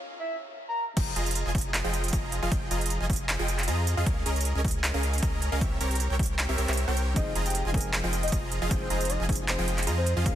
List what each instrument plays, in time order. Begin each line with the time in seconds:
0.19 soft synth lead E5
0.68 soft synth lead A#5
0.97 sub bass F1, supersaw synth F3 F4 G#4 D#5 G5, kick, closed hi-hat, crash
1.16 sub bass F1, supersaw synth F3 F4 G#4 D#5 A#5, closed hi-hat
1.26 closed hi-hat
1.31 closed hi-hat
1.35 closed hi-hat
1.46 sub bass F1, supersaw synth F3 F4 G#4 D#5 G#5
1.55 kick, closed hi-hat
1.58 closed hi-hat
1.61 closed hi-hat
1.74 clap, closed hi-hat
1.84 sub bass F1, supersaw synth F3 F4 G#4 D#5 G5
1.94 closed hi-hat
2.04 closed hi-hat
2.08 closed hi-hat
2.13 sub bass F1, supersaw synth F3 F4 G#4 D#5 A#5, kick, closed hi-hat
2.32 closed hi-hat
2.42 sub bass F1, supersaw synth F3 F4 G#4 D#5 F5
2.52 sub bass F1, kick, closed hi-hat
2.71 sub bass F1, supersaw synth F3 F4 G#4 D#5 A#5, closed hi-hat
2.81 closed hi-hat
2.86 closed hi-hat
2.90 closed hi-hat
3.01 sub bass F1, supersaw synth F3 F4 G#4 D#5 G#5
3.10 kick, closed hi-hat
3.13 closed hi-hat
3.16 closed hi-hat
3.29 clap, closed hi-hat
3.39 sub bass F1, supersaw synth F3 F4 G#4 D#5 G5
3.48 closed hi-hat
3.59 clap, closed hi-hat
3.63 closed hi-hat
3.68 sub bass F2, supersaw synth F3 F4 G#4 D#5 A#5, closed hi-hat
3.87 closed hi-hat
3.97 sub bass F2, supersaw synth F3 F4 G#4 D#5 F5
4.06 sub bass C#2, supersaw synth C#4 G#4 A#4 D#5, kick, closed hi-hat
4.26 sub bass C#2, supersaw synth C#4 G#4 A#4 D#5 A#5, closed hi-hat
4.36 closed hi-hat
4.41 closed hi-hat
4.45 closed hi-hat
4.55 sub bass C#2, supersaw synth C#4 G#4 A#4 D#5 G#5
4.64 kick, closed hi-hat
4.68 closed hi-hat
4.71 closed hi-hat
4.84 clap, closed hi-hat
4.94 sub bass C#2, supersaw synth C#4 G#4 A#4 D#5 F5
5.03 closed hi-hat
5.13 closed hi-hat
5.18 closed hi-hat
5.23 sub bass C#2, supersaw synth C#4 G#4 A#4 D#5 A#5, kick, closed hi-hat
5.42 closed hi-hat
5.52 sub bass C#2, supersaw synth C#4 G#4 A#4 D#5 F5
5.61 sub bass C2, kick, closed hi-hat
5.81 sub bass C2, supersaw synth C4 G4 A#4 C#5 A#5, closed hi-hat
5.91 closed hi-hat
5.95 closed hi-hat
6.00 closed hi-hat
6.10 sub bass C2, supersaw synth C4 G4 A#4 C#5 G5
6.19 kick, closed hi-hat
6.23 closed hi-hat
6.26 closed hi-hat
6.39 clap, closed hi-hat
6.49 sub bass C2, supersaw synth C4 G4 A#4 C#5 E5
6.58 sub bass C2, supersaw synth C4 G4 A#4 C#5 E5, closed hi-hat
6.68 sub bass C2, supersaw synth C4 G4 A#4 C#5 E5, clap, closed hi-hat
6.73 closed hi-hat
6.77 closed hi-hat
6.88 sub bass C2, supersaw synth C4 G4 A#4 C#5 G5
6.97 closed hi-hat
7.14 sub bass F1, grand piano F3 G#3 C4 D#4, supersaw synth F3 F4 G#4 D#5 G5, soft synth lead D#5, kick, closed hi-hat
7.18 grand piano G#4
7.35 sub bass F1, supersaw synth F3 F4 G#4 D#5 A#5, closed hi-hat
7.46 soft synth lead G5, closed hi-hat
7.50 closed hi-hat
7.55 closed hi-hat
7.65 sub bass F1, supersaw synth F3 F4 G#4 D#5 G#5
7.72 grand piano F3 G#3 C4 D#4, soft synth lead G#5, kick, closed hi-hat
7.76 grand piano A#4, closed hi-hat
7.81 closed hi-hat
7.93 clap, closed hi-hat
8.04 sub bass F1, supersaw synth F3 F4 G#4 D#5 G5
8.13 closed hi-hat
8.23 soft synth lead D#5, closed hi-hat
8.28 closed hi-hat
8.32 sub bass F1, supersaw synth F3 F4 G#4 D#5 A#5, kick, closed hi-hat
8.52 closed hi-hat
8.62 sub bass F1, supersaw synth F3 F4 G#4 D#5 F5
8.69 sub bass F1, grand piano F3 G#3 C4 D#4 G#4, supersaw synth F3 F4 G#4 D#5 G5, kick, closed hi-hat
8.81 soft synth lead C5
8.90 sub bass F1, supersaw synth F3 F4 G#4 D#5 A#5, closed hi-hat
9.01 closed hi-hat
9.05 closed hi-hat
9.10 soft synth lead D#5, closed hi-hat
9.20 sub bass F1, supersaw synth F3 F4 G#4 D#5 G#5
9.28 grand piano F3 G#3 C4 D#4 G#4, kick, closed hi-hat
9.32 closed hi-hat
9.35 closed hi-hat
9.48 soft synth lead C5, clap, closed hi-hat
9.59 sub bass F1, supersaw synth F3 F4 G#4 D#5 G5
9.68 closed hi-hat
9.78 clap, closed hi-hat
9.83 closed hi-hat
9.87 sub bass F2, supersaw synth F3 F4 G#4 D#5 A#5, closed hi-hat
9.97 soft synth lead C5
10.06 closed hi-hat
10.17 sub bass F2, supersaw synth F3 F4 G#4 D#5 F5
10.24 sub bass C#2, grand piano F3 A#3 C#4 D#4, supersaw synth C#4 A#4 D#5, soft synth lead F5, kick, closed hi-hat
10.28 grand piano G#4